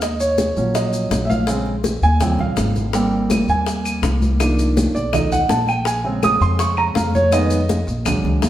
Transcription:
Already playing: upright bass D#2
0.02 grand piano D#5, high bongo, high conga, maracas
0.20 grand piano C#5, high conga, maracas
0.38 high bongo, high conga, maracas
0.56 upright bass A#1, grand piano F3 F#3 C#4, high conga, maracas
0.75 grand piano D#5, high bongo, high conga, maracas
0.93 high conga, maracas
1.11 upright bass A#1, high bongo, low bongo, high conga, maracas
1.25 grand piano E5
1.30 grand piano F5, high conga, maracas
1.47 grand piano C#3 G#3 C4, high bongo, high conga, maracas
1.66 high bongo
1.84 high bongo, high conga, maracas
2.02 upright bass D#2, grand piano G#5, high conga, maracas
2.20 grand piano C#3 F3 G3 C4 G5, high bongo, high conga, low conga, maracas
2.39 upright bass A#1, grand piano F5, high bongo, high conga, low conga
2.57 upright bass G#1, high bongo, low bongo, high conga, maracas
2.76 high bongo, high conga, maracas
2.93 grand piano G3 A#3 C4 G5, high bongo, high conga, maracas
3.12 high conga
3.30 high bongo, high conga, claves, maracas
3.48 upright bass D#2, grand piano G#5, high conga, maracas
3.67 high bongo, high conga, maracas
3.85 high conga, claves, maracas
4.02 upright bass C2, high bongo, low bongo, high conga, maracas
4.22 high conga, maracas
4.40 grand piano D#3 F3 A#3 D4, high bongo, high conga, claves, maracas
4.59 high bongo, high conga, maracas
4.77 high bongo, high conga, maracas
4.94 upright bass B1, grand piano D5, high conga, maracas
5.13 grand piano F3 A3 D#4 D#5, high bongo, high conga, low conga, claves, maracas
5.32 grand piano F#5, high bongo, high conga, low conga, maracas
5.49 upright bass A#1, grand piano A5, high bongo, low bongo, high conga, maracas
5.68 grand piano G5, high bongo, claves, maracas
5.85 grand piano G#5, high bongo, high conga, maracas
6.04 grand piano C#3 G#3 C4, high conga
6.23 grand piano D#6, high bongo, high conga, claves, maracas
6.41 upright bass F2, grand piano C6, high conga, maracas
6.59 grand piano C#6, high bongo, high conga, maracas
6.77 grand piano A#5, high conga, claves
6.95 upright bass F2, grand piano F5, high bongo, low bongo, high conga, maracas
7.15 grand piano C#5, high conga, maracas
7.32 grand piano D#3 G#3 B3 D#5, high bongo, high conga, claves, maracas
7.50 high bongo, high conga, maracas
7.69 high bongo, high conga, maracas
7.87 upright bass A#1, high conga, maracas
8.05 grand piano F#3 G#3 D4, high bongo, high conga, low conga, claves, maracas
8.23 upright bass C#2, high bongo, high conga, low conga
8.42 upright bass D#2, high bongo, low bongo, high conga, maracas

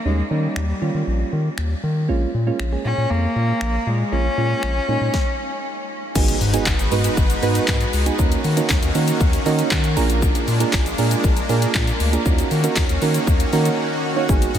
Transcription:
0.05 analog synth bass D#2, synth keys G3 A#3 C#4 D#4, cello G#3
0.30 analog synth bass D#3, synth keys G3 A#3 C#4 D#4, cello G3
0.56 analog synth bass D#2, finger snap
0.81 analog synth bass D#3, synth keys G3 A#3 C#4 F4
0.94 analog synth bass D#3
1.07 analog synth bass A#1
1.33 analog synth bass D#3
1.58 analog synth bass D#2, finger snap
1.83 analog synth bass D#3
2.08 analog synth bass A#1, synth keys G#3 A#3 C#4 F4
2.34 analog synth bass A#2
2.47 synth keys G#3 A#3 C#4 F4
2.60 analog synth bass A#1, finger snap
2.72 synth keys G#3 A#3 C#4 G#4
2.85 analog synth bass A#2, cello C#4
2.98 analog synth bass A#2
3.10 analog synth bass F2, cello A#3
3.36 analog synth bass A#2
3.61 analog synth bass A#1, finger snap
3.87 analog synth bass A#2, cello G#3
4.12 analog synth bass A#1, synth keys G#3 A#3 C#4 F4, cello C#4
4.37 analog synth bass A#2, synth keys G#3 A#3 C#4 F4
4.63 analog synth bass A#1, finger snap
4.88 analog synth bass A#2, synth keys G#3 A#3 C#4 D#4
5.01 analog synth bass A#2
5.14 kick, snare
6.15 analog synth bass G#1, synth keys G#3 B3 D#4 F#4 G#4, supersaw synth G#3 D#4 F#4 B4, kick, crash, impact, shaker
6.28 closed hi-hat, shaker
6.41 analog synth bass G#2, open hi-hat, shaker
6.53 synth keys G#3 B3 D#4 F#4 G#4, closed hi-hat, shaker
6.66 analog synth bass G#1, kick, snare, clap, tambourine, shaker
6.79 analog synth bass G#1, closed hi-hat, shaker
6.92 analog synth bass G#2, synth keys G#3 B3 D#4 F#4 B4, open hi-hat, shaker
7.04 closed hi-hat, shaker
7.17 analog synth bass G#1, kick, shaker
7.30 closed hi-hat, shaker
7.42 analog synth bass G#2, synth keys G#3 B3 D#4 F#4 B4, open hi-hat, shaker
7.55 closed hi-hat, shaker
7.67 analog synth bass G#2, kick, snare, clap, tambourine, shaker
7.81 closed hi-hat, shaker
7.93 analog synth bass C#2, open hi-hat, shaker
8.06 synth keys G#3 B3 D#4 F#4 G#4, closed hi-hat, shaker
8.19 analog synth bass D#2, supersaw synth D#3 A#3 C#4 F#4, synth keys A#3 C#4 D#4 F#4 A#4, kick, shaker
8.32 closed hi-hat, shaker
8.44 analog synth bass D#3, open hi-hat, shaker
8.57 synth keys A#3 C#4 D#4 F#4 A#4, closed hi-hat, shaker
8.69 analog synth bass D#2, kick, snare, clap, tambourine, shaker
8.82 analog synth bass D#2, closed hi-hat, shaker
8.95 analog synth bass D#3, synth keys A#3 C#4 D#4 F#4 A#4, open hi-hat, shaker
9.08 closed hi-hat, shaker
9.21 analog synth bass D#2, kick, shaker
9.33 closed hi-hat, shaker
9.46 analog synth bass D#3, synth keys A#3 C#4 D#4 F#4 A#4 D#5, open hi-hat, shaker
9.59 closed hi-hat, shaker
9.71 analog synth bass D#3, synth keys F#5, kick, snare, clap, tambourine, shaker
9.84 closed hi-hat, shaker
9.96 analog synth bass A#1, supersaw synth G#3 D4, synth keys A#3 D4 F4 G#4 A#4 A#5, open hi-hat, shaker
10.10 closed hi-hat, shaker
10.22 kick, shaker
10.35 closed hi-hat, shaker
10.48 analog synth bass A#2, open hi-hat, shaker
10.60 synth keys A#3 D4 F4 G#4 A#4, closed hi-hat, shaker
10.73 analog synth bass A#1, kick, snare, clap, tambourine, shaker
10.86 analog synth bass A#1, closed hi-hat, shaker
10.98 analog synth bass A#2, synth keys A#3 D4 F4 G#4 A#4, open hi-hat, shaker
11.11 closed hi-hat, shaker
11.24 analog synth bass A#1, kick, shaker
11.37 closed hi-hat, shaker
11.49 analog synth bass A#2, synth keys A#3 D4 F4 G#4 A#4, open hi-hat, shaker
11.62 closed hi-hat, shaker
11.74 analog synth bass A#2, kick, snare, clap, tambourine, shaker
11.87 closed hi-hat, shaker
12.00 analog synth bass D2, open hi-hat, shaker
12.13 synth keys A#3 D4 F4 G#4 A#4, closed hi-hat, shaker
12.25 analog synth bass D#2, supersaw synth D#3 C#4 F#4, synth keys A#3 C#4 D#4 F#4 A#4, kick, shaker
12.38 closed hi-hat, shaker
12.51 analog synth bass D#3, open hi-hat, shaker
12.64 synth keys A#3 C#4 D#4 F#4 A#4, closed hi-hat, shaker
12.76 analog synth bass D#2, kick, snare, clap, tambourine, shaker
12.89 analog synth bass D#2, closed hi-hat, shaker
13.02 analog synth bass D#3, synth keys A#3 C#4 D#4 F#4 A#4, open hi-hat, shaker
13.14 closed hi-hat, shaker
13.27 analog synth bass D#2, kick, shaker
13.40 closed hi-hat, shaker
13.53 analog synth bass D#3, synth keys A#3 C#4 D#4 F#4 A#4, open hi-hat, shaker
13.65 closed hi-hat, shaker
14.16 synth keys A#3 C#4 D#4 F#4 C#5
14.29 analog synth bass G#1, synth keys G#3 B3 D#4 F#4 G#4, supersaw synth G#3 D#4 B4, kick, shaker
14.42 closed hi-hat, shaker
14.55 analog synth bass G#2, open hi-hat, shaker

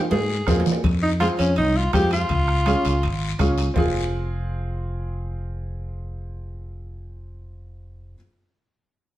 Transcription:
0.11 fingered electric bass G#2, alto saxophone G#4, cowbell, high conga, low timbale, long guiro
0.47 fingered electric bass F2, upright piano C4 F4 G#4, bombo low, bombo rim, cowbell, low timbale, short guiro
0.60 low timbale
0.66 low conga, short guiro
0.72 low timbale
0.84 fingered electric bass F2, bombo low, high conga, high timbale, long guiro
1.02 alto saxophone D#4
1.20 upright piano C4 F4 G#4, alto saxophone F4, bombo rim, high conga, high timbale, short guiro
1.39 fingered electric bass F2, alto saxophone C#4, high timbale, short guiro
1.56 fingered electric bass C2, alto saxophone D#4, high conga, high timbale, long guiro
1.77 alto saxophone F4
1.93 fingered electric bass F2, upright piano C4 F4 G#4, alto saxophone G4, bombo low, bombo rim, high conga, high timbale, low timbale, short guiro
2.11 alto saxophone F4, high timbale, short guiro
2.29 fingered electric bass C#2, bombo low, high conga, high timbale, long guiro
2.48 bombo rim
2.66 upright piano C#4 F4 G#4, bombo rim, high conga, high timbale, short guiro
2.85 fingered electric bass C#2, high timbale, short guiro
3.03 fingered electric bass G#1, high conga, high timbale, long guiro
3.39 fingered electric bass C#2, upright piano C#4 F4 G#4, bombo low, bombo rim, high conga, high timbale, low timbale, short guiro
3.58 high timbale, short guiro
3.74 fingered electric bass F1, upright piano C4 F4, bombo low, low conga, low timbale, long guiro
3.78 upright piano G#4

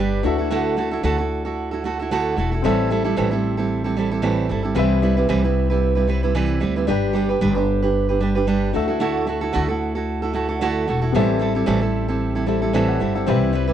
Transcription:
Already playing: upright bass G1, steel-string acoustic guitar G3 D4, felt piano D4 G4 B4 G5
0.00 steel-string acoustic guitar G4 B4
0.23 upright bass D2, steel-string acoustic guitar A3 E4 F#4 A4, felt piano D4 F#4 A4
0.27 felt piano E5
0.38 steel-string acoustic guitar E4 F#4 A4
0.51 steel-string acoustic guitar D3 A3 E4 F#4 A4
0.77 steel-string acoustic guitar A3 E4 F#4 A4
0.91 steel-string acoustic guitar E4 F#4 A4
1.03 upright bass D2, steel-string acoustic guitar D3 A3 E4 F#4 A4
1.18 steel-string acoustic guitar E4 F#4 A4
1.45 steel-string acoustic guitar E4 F#4 A4
1.71 steel-string acoustic guitar E4 F#4 A4
1.84 steel-string acoustic guitar A3 E4 F#4 A4
2.00 steel-string acoustic guitar E4 F#4 A4
2.11 steel-string acoustic guitar D3 A3 E4 F#4 A4
2.37 upright bass E1, steel-string acoustic guitar A3 E4 F#4 A4
2.52 steel-string acoustic guitar E4 F#4 A4
2.62 upright bass A1, steel-string acoustic guitar A2 E3 G3 C4 E4 A4, felt piano C4 G4 A4 E5
2.90 steel-string acoustic guitar G3 C4 E4 A4
3.04 steel-string acoustic guitar G3 C4 E4 A4
3.17 upright bass A1, steel-string acoustic guitar A2 E3 G3 C4 E4 A4
3.31 steel-string acoustic guitar G3 C4 E4 A4
3.57 steel-string acoustic guitar G3 C4 E4 A4
3.84 steel-string acoustic guitar G3 C4 E4 A4
3.97 steel-string acoustic guitar G3 C4 E4 A4
4.11 steel-string acoustic guitar G3 C4 E4 A4
4.22 steel-string acoustic guitar A2 E3 G3 C4 E4 A4
4.49 upright bass G1, steel-string acoustic guitar G3 C4 E4 A4
4.63 steel-string acoustic guitar G3 C4 E4 A4
4.75 upright bass C2, steel-string acoustic guitar C3 E3 G3 C4 E4 B4, felt piano C4 G4 B4
4.79 felt piano E5
5.02 steel-string acoustic guitar G3 C4 E4 B4
5.17 steel-string acoustic guitar G3 C4 E4 B4
5.29 upright bass C2, steel-string acoustic guitar C3 E3 G3 C4 E4 B4
5.43 steel-string acoustic guitar G3 C4 E4 B4
5.70 steel-string acoustic guitar G3 C4 E4 B4
5.95 steel-string acoustic guitar G3 C4 E4 B4
6.07 steel-string acoustic guitar G3 C4 E4 B4
6.23 steel-string acoustic guitar G3 C4 E4 B4
6.35 steel-string acoustic guitar C3 E3 G3 C4 E4 B4
6.60 upright bass D2, steel-string acoustic guitar G3 C4 E4 B4
6.76 steel-string acoustic guitar G3 C4 E4 B4
6.86 upright bass G1, steel-string acoustic guitar G3 D4 G4 B4, felt piano D4 G4 B4
6.91 felt piano G5
7.13 steel-string acoustic guitar G3 D4 G4 B4
7.29 steel-string acoustic guitar D4 G4 B4
7.41 upright bass G1, steel-string acoustic guitar G3 D4 G4 B4
7.55 steel-string acoustic guitar D4 G4 B4
7.82 steel-string acoustic guitar D4 G4 B4
8.09 steel-string acoustic guitar D4 G4 B4
8.20 steel-string acoustic guitar G3 D4 G4 B4
8.35 steel-string acoustic guitar D4 G4 B4
8.47 steel-string acoustic guitar G3 D4 G4 B4
8.73 upright bass D2, steel-string acoustic guitar A3 E4 F#4 A4, felt piano D4 F#4 A4 E5
8.88 steel-string acoustic guitar E4 F#4 A4
9.00 steel-string acoustic guitar D3 A3 E4 F#4 A4
9.27 steel-string acoustic guitar A3 E4 F#4 A4
9.41 steel-string acoustic guitar E4 F#4 A4
9.53 upright bass D2, steel-string acoustic guitar D3 A3 E4 F#4 A4
9.68 steel-string acoustic guitar E4 F#4 A4
9.95 steel-string acoustic guitar E4 F#4 A4
10.22 steel-string acoustic guitar E4 F#4 A4
10.33 steel-string acoustic guitar A3 E4 F#4 A4
10.49 steel-string acoustic guitar E4 F#4 A4
10.61 steel-string acoustic guitar D3 A3 E4 F#4 A4
10.88 upright bass E1, steel-string acoustic guitar A3 E4 F#4 A4
11.01 steel-string acoustic guitar E4 F#4 A4
11.12 upright bass A1, steel-string acoustic guitar A2 E3 G3 C4 E4 A4, felt piano B3 G4 A4
11.16 felt piano C4 E5
11.39 steel-string acoustic guitar G3 C4 E4 A4
11.55 steel-string acoustic guitar G3 C4 E4 A4
11.66 upright bass A1, steel-string acoustic guitar A2 E3 G3 C4 E4 A4
11.81 steel-string acoustic guitar G3 C4 E4 A4
12.08 steel-string acoustic guitar G3 C4 E4 A4
12.35 steel-string acoustic guitar G3 C4 E4 A4
12.46 steel-string acoustic guitar G3 C4 E4 A4, felt piano C4 G4 A4 E5
12.62 steel-string acoustic guitar G3 C4 E4 A4
12.73 steel-string acoustic guitar A2 E3 G3 C4 E4 A4, felt piano C5 E5
12.88 felt piano D5 F#5
13.00 upright bass G1, steel-string acoustic guitar G3 C4 E4 A4
13.15 steel-string acoustic guitar G3 C4 E4 A4, felt piano C5 E5
13.26 upright bass C2, steel-string acoustic guitar C3 E3 G3 C4 E4 B4, felt piano C4 G4 B4 E5
13.53 steel-string acoustic guitar G3 C4 E4 B4
13.67 steel-string acoustic guitar G3 C4 E4 B4

